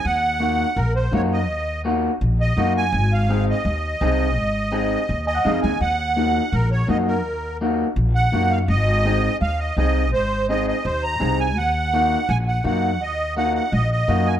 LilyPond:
<<
  \new Staff \with { instrumentName = "Accordion" } { \time 4/4 \key ees \dorian \tempo 4 = 167 ges''2 bes'8 c''8 des''8 ees''8~ | ees''4 r4. ees''4 aes''8~ | aes''8 f''4 ees''2~ ees''8~ | ees''2~ ees''8 ees''4 aes''8 |
ges''2 bes'8 des''8 ees''8 bes'8~ | bes'4 r4. ges''4 f''8 | ees''2 f''8 ees''8 ees''4 | c''4 ees''8 ees''8 c''8 bes''4 aes''8 |
ges''2 aes''8 ges''8 ges''4 | ees''4 ges''8 ges''8 ees''8 ees''4 aes''8 | }
  \new Staff \with { instrumentName = "Clean electric guitar" } { \time 4/4 \key ees \dorian r4 <bes ees' ges'>8 r4. <bes ees' ges'>8 r8 | r4 <bes ees' ges'>8 r4. <bes ees' ges'>8 r8 | r4 <c' ees' aes'>8 r4. <c' ees' aes'>8 r8 | r4 <c' ees' aes'>8 r8 \tuplet 3/2 { r8. aes''16 ges''8 } <c' ees' aes' f''>8 ees''8 |
r4 <bes ees' ges'>8 r4. <bes ees' ges'>8 r8 | r4 <bes ees' ges'>8 r4. <bes ees' ges'>8 r8 | r4 <c' ees' aes'>8 r4. <c' ees' aes'>8 r8 | r4 <c' ees' aes'>8 r4. <c' ees' aes'>8 r8 |
r4 <bes ees' ges'>8 r4. <bes ees' ges'>8 r8 | r4 <bes ees' ges'>8 r4. <bes ees' ges'>8 r8 | }
  \new Staff \with { instrumentName = "Upright bass" } { \clef bass \time 4/4 \key ees \dorian ees,2 bes,,4 ges,4 | ees,2 bes,,4 ges,4 | aes,,2 ees,4 c,4 | aes,,2 ees,4 f,8 ees,8 |
ees,2 bes,,4 ges,4 | ees,2 bes,,4 ges,4 | aes,,2 ees,4 c,4 | aes,,2 ees,4 c,4 |
ees,2 bes,,4 ges,4 | ees,2 bes,,4 ges,4 | }
>>